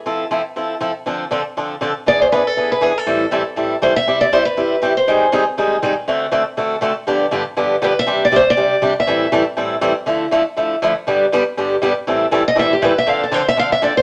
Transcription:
X:1
M:4/4
L:1/8
Q:"Swing" 1/4=240
K:Am
V:1 name="Steel-string acoustic guitar"
z8 | z8 | d c B A2 B ^G A- | A6 c e- |
[K:C] e d c B3 z c- | c3 z4 z | z8 | z6 B e- |
e d c d3 z e- | e3 z4 z | z8 | z8 |
[K:Am] z3 ^d e G B e | f A c e f e d c |]
V:2 name="Steel-string acoustic guitar"
[F,CEA] z [F,CEA] z [F,CEA] z [F,CEA] z | [D,F,CDA] z [D,F,CDA] z [D,F,CDA] z [D,F,CDA] z | [E,B,D^G] z [E,B,DG] z [E,B,DG] z [E,B,DG] z | [A,,E,G,CEA] z [A,,E,G,CEA] z [A,,E,G,CEA] z [A,,E,G,CEA] z |
[K:C] [C,G,CEG] z [C,G,CEG] z [C,G,CEG] z [C,G,CEG] z | [_A,,_E,G,C_E_A] z [A,,E,G,CEA] z [A,,E,G,CEA] z [A,,E,G,CEA] z | [D,A,C^FA] z [D,A,CFA] z [D,A,CFA] z [D,A,CFA] z | [G,,D,F,B,DG] z [G,,D,F,B,DG] z [G,,D,F,B,DG] z [G,,D,F,B,DG] z |
[C,G,CDG] z [C,G,CDG] z [C,G,CDG] z [C,G,CDG] z | [A,,E,G,CEA] z [A,,E,G,CEA] z [A,,E,G,CEA] z [A,,E,G,CEA] z | [D,F,A,E] z [D,F,A,E] z [D,F,A,E] z [D,F,A,E] z | [G,,D,G,B,DG] z [G,,D,G,B,DG] z [G,,D,G,B,DG] z [G,,D,G,B,DG] z |
[K:Am] [A,,E,G,CEA] z [A,,E,G,CEA] z [A,,E,G,CEA] z [A,,E,G,CEA] z | [D,F,CDA] z [D,F,CDA] z [D,F,CDA] z [D,F,CDA] z |]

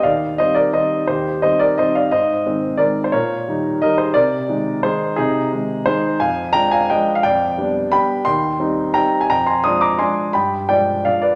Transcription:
X:1
M:3/4
L:1/16
Q:1/4=174
K:Cm
V:1 name="Grand piano"
[df]4 [ce]2 [Bd]2 [ce]4 | [Gc]4 [ce]2 [Bd]2 [ce]2 [df]2 | [ce]8 [Bd]3 c | [B_d]8 [Be]2 [Ac]2 |
[Bd]8 [Ac]4 | [EA]8 [Ac]4 | [fa]4 [gb]2 [fa]2 [eg]3 f | [dg]8 [g=b]4 |
[gc']8 [gb]3 a | [gb]2 [ac']2 [c'e']2 [bd']2 [ac']4 | [g=b]4 [dg]4 [df]2 [=Bd]2 |]
V:2 name="Grand piano" clef=bass
E,,4 [E,G,C]4 [E,G,C]4 | E,,4 [E,G,C]4 [E,G,C]4 | A,,4 [E,A,C]4 [E,A,C]4 | B,,4 [E,G,E]4 [E,G,E]4 |
C,4 [E,A,E]4 [E,A,E]4 | C,4 [E,A,E]4 [E,A,E]4 | F,,4 [F,A,D]4 [F,A,D]4 | F,,4 [G,=B,D]4 [G,B,D]4 |
E,,4 [G,CE]4 [G,CE]4 | F,,4 [F,A,D]4 [F,A,D]4 | G,,4 [F,A,D]4 [F,A,D]4 |]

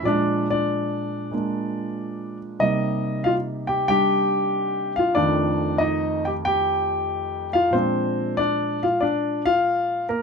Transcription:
X:1
M:4/4
L:1/8
Q:"Swing" 1/4=94
K:Bbmix
V:1 name="Grand piano"
[Dd] [Dd]6 z | e2 [Ff] [Gg] [Gg]3 [Ff] | [Dd]2 [Ee] [Gg] [Gg]3 [Ff] | [Cc]2 [Dd] [Ff] [Dd] [Ff]2 [B,B] |]
V:2 name="Grand piano" clef=bass
[B,,F,A,]4 [A,B,D]4 | [C,G,B,E]4 [G,D]4 | [F,,E,F,=A,]8 | [B,,F,A,D]8 |]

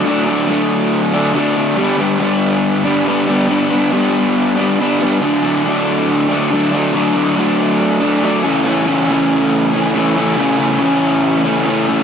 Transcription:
X:1
M:4/4
L:1/8
Q:1/4=140
K:D
V:1 name="Overdriven electric guitar"
[D,F,A,D] [F,A,D] [D,F,A,D]3 [F,A,D] [D,F,A,D] [F,A,D] | [G,,D,G,B,D] [G,B,D] [G,,D,G,B,D]3 [G,B,D] [D,G,B,D] [G,B,D] | [G,,D,G,B,D] [G,B,D] [G,,D,G,B,D]3 [G,B,D] [D,G,B,D] [G,B,D] | [D,F,A,D] [F,A,D] [D,F,A,D]3 [F,A,D] [D,F,A,D] [F,A,D] |
[D,F,A,D] [F,A,D] [D,F,A,D]3 [F,A,D] [D,F,A,D] [C,E,A,C] | [C,E,A,C] [E,A,C] [C,E,A,C]3 [E,A,C] [C,E,A,C] [E,A,C] | [C,E,A,C] [E,A,C] [C,E,A,C]3 [E,A,C] [C,E,A,C] [E,A,C] |]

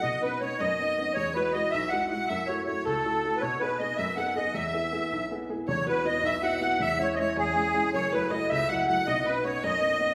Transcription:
X:1
M:6/8
L:1/16
Q:3/8=106
K:E
V:1 name="Accordion"
d2 B2 c2 d6 | c2 B2 d2 e2 f2 f2 | e2 c2 c2 A4- A3/2 B/2 | c2 B2 d2 e2 f2 d2 |
e8 z4 | c2 B2 d2 e2 f2 f2 | e2 c3/2 d/2 c2 G6 | c2 B2 d2 e2 f2 f2 |
d2 B2 c2 d6 |]
V:2 name="Fiddle"
d2 B2 c2 d6 | c2 B2 d2 e2 f2 f2 | e2 c2 c2 A6 | c2 B2 d2 e2 f2 d2 |
e8 z4 | c2 B2 d2 e4 f2 | e2 c2 c2 G6 | c2 B2 d2 e2 f2 f2 |
d2 B2 c2 d6 |]
V:3 name="Harp"
z12 | z12 | z12 | z12 |
z12 | c2 B2 d2 e2 f2 f2 | e2 c2 c2 G6 | c2 B2 d2 e2 f2 f2 |
d2 B2 c2 d6 |]
V:4 name="Upright piano"
B,,2 [B,CD]2 [B,CD]2 F,,2 [B,CD]2 [B,CD]2 | E,,2 [G,EF]2 [G,EF]2 B,,,2 [G,EF]2 [G,EF]2 | F,,2 [A,EF]2 [A,EF]2 C,,2 [A,EF]2 [A,EF]2 | B,,2 [B,DG]2 [B,DG]2 F,,2 [B,DG]2 [B,DG]2 |
E,,2 [B,EG]2 [B,EG]2 B,,,2 [B,EG]2 [B,EG]2 | [E,,,E,,]2 [B,EF]2 [B,EF]2 B,,,2 [B,EF]2 [B,EF]2 | [E,,,E,,]2 [G,CE]2 [G,CE]2 E,,2 [G,CE]2 [G,CE]2 | [F,,,F,,]2 [F,A,E]2 [F,A,E]2 C,,2 [F,A,E]2 [F,A,E]2 |
[B,,,B,,]2 [B,CD]2 [B,CD]2 F,,2 [B,CD]2 [B,CD]2 |]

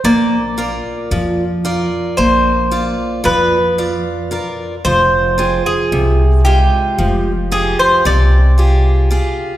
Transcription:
X:1
M:9/8
L:1/16
Q:3/8=37
K:none
V:1 name="Bouzouki"
d8 c4 B4 z2 | c3 _A3 G4 A c d4 z2 |]
V:2 name="Steel-string acoustic guitar"
_B,2 [F_Bd]2 F,2 [FBd]2 B,2 [Fd]2 F,2 [Fd]2 [FBd]2 | F,2 [F_Ag]2 C,2 [_A,FG]2 F,2 [FGA]2 C,2 [FGA]2 [FGA]2 |]
V:3 name="Upright bass" clef=bass
_B,,,4 F,,4 B,,,4 F,,6 | F,,,4 C,,4 F,,,4 C,,6 |]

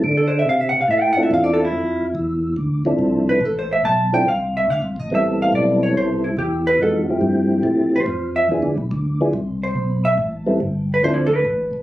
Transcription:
X:1
M:4/4
L:1/16
Q:"Swing" 1/4=142
K:Ddor
V:1 name="Hollow-body jazz guitar"
z A c e f e ^f =f e g ^f e =f d A E- | E3 z8 z3 B2 | (3A2 c2 e2 a2 g2 f2 e2 f2 ^d2 | e2 f2 d2 ^c2 =c2 E2 G2 B2 |
A2 z8 c4 e2 | z8 z2 c4 e2 | z6 z B c E A B4- B |]
V:2 name="Tonewheel organ"
z8 z2 [CDEFA]6 | z8 z2 [F,CDEA]6 | z6 [F,CDEA]2 z8 | [G,B,CEA]8- [G,B,CEA]2 z6 |
[E,^G,B,^D^F]2 [=F,A,CE=G]8 z6 | [F,B,DE^G]2 z4 [F,B,DEG]2 z8 | z2 [G,B,CEA]2 z4 [F,CDEA]2 z6 |]
V:3 name="Tonewheel organ" clef=bass
D,4 C,2 C,2 A,,4 E,,4 | F,,4 E,,4 D,,2 D,,2 C,,4 | A,,,4 B,,,4 C,,4 (3D,,2 C,,2 A,,,2 | A,,,4 B,,,4 C,,4 E,,4 |
F,,4 G,,4 A,,4 F,,4 | (3E,,2 D,,2 B,,,2 D,,4 C,,4 B,,,4 | A,,,4 G,,,4 D,,4 A,,,2 A,,,2 |]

